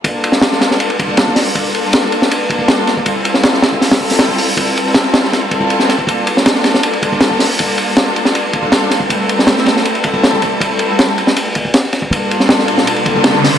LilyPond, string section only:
\new Staff \with { instrumentName = "String section" } { \time 4/4 \key g \dorian \tempo 4 = 159 <g bes d' f' a'>2~ <g bes d' f' a'>8 <g bes d' f' a'>4. | <g bes d' f' a'>2~ <g bes d' f' a'>8 <g bes d' f' a'>4. | <g c' e' f' a'>2~ <g c' e' f' a'>8 <g c' e' f' a'>4. | <g c' e' f' a'>2~ <g c' e' f' a'>8 <g c' e' f' a'>4. |
<g bes d' f' a'>2~ <g bes d' f' a'>8 <g bes d' f' a'>4. | <g bes d' f' a'>2~ <g bes d' f' a'>8 <g bes d' f' a'>4. | <g a c' e' a'>2~ <g a c' e' a'>8 <g a c' e' a'>4. | <g a c' e' a'>2~ <g a c' e' a'>8 r4. |
<g bes d' f' a'>2~ <g bes d' f' a'>8 <g bes d' f' a'>4. | }